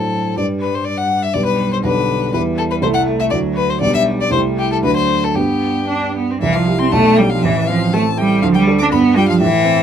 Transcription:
0.00 0.40 A2 soft
0.00 0.37 F#3 soft
0.00 0.40 F#3 soft
0.00 0.38 D4 soft
0.00 0.37 A4 medium
0.00 0.40 C5 soft
0.37 1.32 G2 soft
0.37 1.32 G3 soft
0.37 1.33 G3 soft
0.37 1.32 D4 soft
0.37 1.32 B4 soft
0.37 0.45 D5 medium
0.62 0.76 B4 medium
0.75 0.86 C5 medium
0.85 0.99 D5 medium
0.97 1.24 F#5 medium
1.23 1.35 E5 medium
1.34 1.82 B1 soft
1.34 1.82 G3 soft
1.34 1.86 G3 soft
1.34 1.83 D4 soft
1.34 1.83 B4 soft
1.34 1.45 D5 medium
1.46 1.71 B4 medium
1.73 1.77 C5 medium
1.84 2.32 B1 medium
1.84 2.34 D3 soft
1.84 2.31 G3 soft
1.84 2.32 D4 soft
1.84 2.33 B4 medium
1.84 2.33 B4 soft
2.33 2.81 E2 soft
2.33 2.81 G3 soft
2.33 2.84 G3 medium
2.33 2.81 E4 soft
2.33 2.42 B4 medium
2.33 2.81 B4 soft
2.58 2.63 A4 medium
2.71 2.76 B4 medium
2.82 3.30 C2 medium
2.82 3.33 A3 medium
2.82 3.30 A3 soft
2.82 3.31 E4 soft
2.82 3.31 A4 soft
2.82 2.87 C5 medium
2.94 3.02 F#5 medium
3.20 3.25 E5 medium
3.30 3.80 D2 medium
3.30 3.80 F#3 medium
3.30 3.80 A3 soft
3.30 3.81 D4 soft
3.30 3.81 F#4 soft
3.30 3.38 D5 medium
3.56 3.71 B4 medium
3.70 3.80 C5 medium
3.81 4.30 B1 medium
3.81 4.31 G3 medium
3.81 4.31 B3 soft
3.81 4.31 D4 soft
3.81 4.31 G4 soft
3.81 3.93 D5 medium
3.94 4.02 E5 medium
4.21 4.31 D5 medium
4.31 4.82 C2 medium
4.31 4.86 G3 medium
4.31 4.81 A3 soft
4.31 4.82 E4 soft
4.31 4.82 G4 soft
4.31 4.40 C5 medium
4.59 4.71 G4 medium
4.72 4.77 A4 medium
4.82 5.34 D2 medium
4.82 5.38 F#3 medium
4.82 5.35 A3 soft
4.82 5.34 D4 soft
4.82 5.35 F#4 soft
4.82 4.95 B4 medium
4.96 5.25 C5 medium
5.24 5.36 A4 medium
5.34 6.37 G2 soft
5.34 6.38 B3 soft
5.34 5.84 B3 medium
5.34 6.38 D4 soft
5.34 6.15 G4 medium
5.34 6.38 G4 soft
5.87 6.13 D4 medium
6.16 6.32 B3 medium
6.30 6.41 C4 medium
6.41 6.92 C2 medium
6.41 6.56 E3 medium
6.41 6.54 E5 medium
6.53 6.80 F3 medium
6.53 6.81 F5 medium
6.67 6.91 E4 soft
6.67 6.91 G4 soft
6.79 6.91 C4 medium
6.79 6.93 C6 medium
6.91 7.42 B1 medium
6.91 7.19 A3 medium
6.91 7.18 A5 medium
7.17 7.31 G3 medium
7.17 7.42 D4 soft
7.17 7.42 G4 soft
7.17 7.31 G5 medium
7.30 7.44 F5 medium
7.34 7.46 F3 medium
7.42 8.39 A1 medium
7.42 7.68 E3 medium
7.42 7.69 E5 medium
7.67 7.93 F3 medium
7.67 8.08 C4 soft
7.67 7.95 F5 medium
7.93 8.01 A3 medium
7.93 8.32 A4 medium
7.93 8.19 A5 medium
8.17 8.45 G3 medium
8.17 8.42 E4 soft
8.17 8.41 G5 medium
8.42 8.90 D2 medium
8.42 8.55 F3 medium
8.42 8.47 F5 medium
8.54 8.79 G3 medium
8.54 8.62 G5 medium
8.67 8.89 D4 soft
8.67 8.89 A4 medium
8.78 8.86 D4 medium
8.78 8.83 D6 medium
8.92 9.39 G2 medium
8.92 9.17 B3 medium
8.92 9.00 B5 medium
9.16 9.28 G3 medium
9.16 9.39 F4 medium
9.16 9.39 G4 medium
9.16 9.28 G5 medium
9.28 9.35 F3 medium
9.28 9.40 F5 medium
9.40 9.83 A2 medium
9.40 9.83 E3 medium
9.40 9.83 E5 medium
9.65 9.83 C4 medium

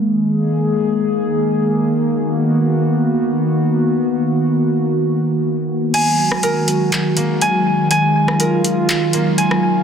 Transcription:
0.00 5.90 D#3 medium
0.00 1.96 G#3 medium
0.00 5.90 A#3 medium
0.00 1.99 G#4 medium
2.01 5.90 B3 medium
2.01 5.90 F#4 medium
5.94 9.83 D#3 medium
5.94 9.83 F#3 medium
5.94 9.83 G#3 medium
5.94 7.89 F#4 medium
5.94 7.41 G#5 loud
5.94 closed hi-hat medium
5.94 crash medium
6.32 cross-stick loud
6.43 8.40 A#4 medium
6.43 closed hi-hat medium
6.68 closed hi-hat medium
6.92 clap loud
6.92 closed hi-hat medium
7.17 9.13 A#3 medium
7.17 closed hi-hat medium
7.41 7.90 G#5 loud
7.41 closed hi-hat medium
7.91 9.83 F4 medium
7.91 9.37 G#5 loud
7.91 closed hi-hat medium
8.28 cross-stick loud
8.40 9.83 A#4 medium
8.40 closed hi-hat medium
8.64 closed hi-hat medium
8.89 clap loud
8.89 closed hi-hat medium
9.13 9.83 A#3 medium
9.13 closed hi-hat medium
9.38 9.83 G#5 loud
9.38 closed hi-hat medium
9.51 cross-stick medium

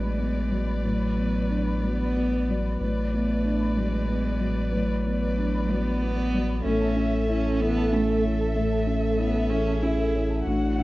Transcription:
0.00 2.76 A1 medium
0.00 0.79 A2 medium
0.00 0.38 F#3 soft
0.00 0.85 G#3 medium
0.00 0.18 B3 soft
0.00 0.85 D4 soft
0.00 2.77 B4 medium
0.00 2.76 D5 medium
0.00 0.12 B5 soft
0.18 0.70 B3 soft
0.34 0.44 B4 medium
0.50 1.03 F#3 soft
0.50 0.60 D5 soft
0.67 0.77 B5 soft
0.83 2.76 A2 medium
0.83 1.85 F#3 medium
0.83 0.93 B4 medium
1.00 1.10 B5 soft
1.16 1.70 B3 soft
1.33 1.43 B4 medium
1.50 2.03 D4 soft
1.50 1.60 D5 soft
1.67 1.77 B5 medium
1.83 2.36 F#3 soft
1.83 2.81 B3 medium
1.83 1.93 B4 medium
2.00 2.10 B5 medium
2.17 2.68 B3 soft
2.33 2.42 B4 medium
2.49 3.00 F#3 soft
2.49 2.58 D5 medium
2.65 2.75 B5 medium
2.80 6.61 A1 medium
2.80 4.69 A2 medium
2.80 2.90 B4 medium
2.80 6.61 B4 medium
2.80 6.61 D5 medium
2.96 3.06 B5 soft
3.12 3.79 A3 medium
3.12 3.64 B3 soft
3.29 3.38 B4 medium
3.45 3.96 D4 soft
3.45 3.55 D5 medium
3.61 3.70 B5 medium
3.77 4.28 F#3 soft
3.77 4.72 G#3 medium
3.77 3.86 B4 medium
3.93 4.02 B5 medium
4.09 4.60 B3 medium
4.25 4.34 B4 medium
4.40 4.92 F#3 soft
4.40 4.50 D5 medium
4.56 4.66 B5 soft
4.72 6.62 A2 medium
4.72 5.72 F#3 medium
4.72 4.82 B4 medium
4.89 4.99 B5 medium
5.05 5.58 B3 soft
5.22 5.31 B4 medium
5.38 5.90 D4 medium
5.38 5.48 D5 medium
5.54 5.64 B5 medium
5.70 6.21 F#3 soft
5.70 6.64 B3 loud
5.70 5.80 B4 medium
5.86 5.96 B5 medium
6.02 6.53 B3 medium
6.18 6.27 B4 medium
6.33 6.65 F#3 medium
6.33 6.43 D5 medium
6.49 6.59 B5 medium
6.64 10.42 A1 medium
6.64 8.52 A2 medium
6.64 7.27 C#4 medium
6.64 6.74 A4 medium
6.64 9.52 A4 medium
6.64 7.57 E5 medium
6.81 6.90 A5 medium
6.96 7.48 C#4 soft
7.12 7.22 A4 medium
7.28 7.62 C#4 loud
7.28 7.80 E4 medium
7.28 7.38 C#5 medium
7.45 7.54 A5 medium
7.60 8.11 E3 soft
7.60 7.94 B3 loud
7.60 7.71 A4 medium
7.60 10.42 E5 medium
7.77 7.87 A5 medium
7.92 8.56 A3 medium
7.92 8.43 C#4 medium
8.09 8.18 A4 medium
8.24 8.75 E3 medium
8.40 8.50 A5 medium
8.56 10.42 A2 medium
8.56 9.20 A3 medium
8.56 8.66 A4 medium
8.72 8.82 A5 medium
8.87 9.38 C#4 medium
9.04 9.13 A4 medium
9.18 9.51 B3 loud
9.18 9.69 E4 medium
9.35 9.45 A5 medium
9.50 10.01 E3 medium
9.50 9.84 C#4 loud
9.50 10.45 G#4 medium
9.50 9.60 A4 medium
9.67 9.76 A5 soft
9.82 10.34 C#4 medium
9.82 10.46 E4 medium
9.98 10.08 A4 medium
10.14 10.46 E3 medium
10.14 10.24 C#5 medium
10.30 10.40 A5 medium
10.46 10.83 A1 medium
10.46 10.83 A2 medium
10.46 10.56 D4 medium
10.46 10.80 F#4 medium
10.46 10.83 F#5 medium
10.63 10.72 D5 soft
10.78 10.83 D3 soft
10.78 10.83 C#4 medium
10.78 10.83 E4 medium

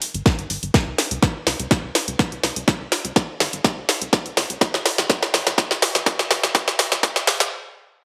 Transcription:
0.02 open hi-hat loud
0.14 0.22 G#1 medium
0.14 closed hi-hat soft
0.26 kick loud
0.26 snare medium
0.26 closed hi-hat medium
0.39 0.46 G#1 medium
0.39 closed hi-hat soft
0.50 0.58 G#1 medium
0.50 open hi-hat medium
0.63 0.70 G#1 medium
0.63 closed hi-hat medium
0.74 kick loud
0.74 snare medium
0.74 closed hi-hat medium
0.87 0.94 C#2 medium
0.98 snare medium
0.98 open hi-hat loud
1.11 1.18 C#2 medium
1.11 closed hi-hat medium
1.23 kick loud
1.23 snare medium
1.23 closed hi-hat medium
1.47 1.55 C#2 medium
1.47 snare medium
1.47 open hi-hat medium
1.59 1.67 C#2 medium
1.59 closed hi-hat medium
1.71 kick loud
1.71 snare medium
1.71 closed hi-hat medium
1.84 1.91 C#2 medium
1.95 snare medium
1.95 open hi-hat loud
2.08 2.15 C#2 medium
2.08 closed hi-hat soft
2.19 kick loud
2.19 snare medium
2.19 closed hi-hat medium
2.32 2.39 C#2 medium
2.32 closed hi-hat soft
2.43 2.52 C#2 medium
2.43 snare medium
2.43 open hi-hat medium
2.56 2.64 C#2 medium
2.56 closed hi-hat medium
2.68 kick loud
2.68 snare medium
2.68 closed hi-hat medium
2.80 2.88 C#2 medium
2.92 snare medium
2.92 open hi-hat loud
3.05 3.12 C#2 medium
3.05 closed hi-hat medium
3.16 kick loud
3.16 snare medium
3.16 closed hi-hat medium
3.40 3.49 G#1 medium
3.40 snare medium
3.40 open hi-hat medium
3.53 3.60 G#1 medium
3.53 closed hi-hat medium
3.64 kick loud
3.64 snare medium
3.64 closed hi-hat medium
3.77 3.85 C#2 medium
3.89 snare medium
3.89 open hi-hat loud
4.01 4.09 C#2 medium
4.01 closed hi-hat medium
4.13 kick loud
4.13 snare medium
4.13 closed hi-hat medium
4.26 4.33 C#2 medium
4.26 closed hi-hat soft
4.37 4.45 C#2 loud
4.37 snare medium
4.37 open hi-hat medium
4.50 4.57 C#2 medium
4.50 closed hi-hat medium
4.61 kick loud
4.61 snare medium
4.61 closed hi-hat medium
4.74 4.81 G#1 medium
4.74 snare medium
4.86 snare medium
4.86 open hi-hat loud
4.98 5.06 G#1 medium
4.98 snare medium
4.98 closed hi-hat medium
5.10 kick loud
5.10 snare medium
5.10 closed hi-hat medium
5.23 snare medium
5.34 5.42 G#1 medium
5.34 snare loud
5.34 open hi-hat medium
5.47 5.54 G#1 medium
5.47 snare medium
5.47 closed hi-hat medium
5.58 kick loud
5.58 snare loud
5.58 closed hi-hat medium
5.71 5.78 G#1 medium
5.71 snare medium
5.82 snare loud
5.82 open hi-hat loud
5.95 6.02 G#1 medium
5.95 snare medium
5.95 closed hi-hat medium
6.06 kick loud
6.06 snare loud
6.06 closed hi-hat medium
6.19 6.27 G#1 medium
6.19 snare medium
6.19 closed hi-hat soft
6.30 6.39 G#1 loud
6.30 snare loud
6.30 open hi-hat medium
6.43 6.51 G#1 medium
6.43 snare medium
6.43 closed hi-hat medium
6.55 kick loud
6.55 snare loud
6.55 closed hi-hat medium
6.68 6.75 G#1 medium
6.68 snare medium
6.68 closed hi-hat soft
6.79 snare loud
6.79 open hi-hat loud
6.92 6.99 G#1 medium
6.92 snare medium
6.92 closed hi-hat medium
7.03 kick loud
7.03 snare loud
7.03 closed hi-hat medium
7.16 snare loud
7.16 closed hi-hat soft
7.27 7.36 D#1 medium
7.27 snare loud
7.27 open hi-hat medium
7.40 7.48 D#1 medium
7.40 snare medium
7.40 closed hi-hat medium

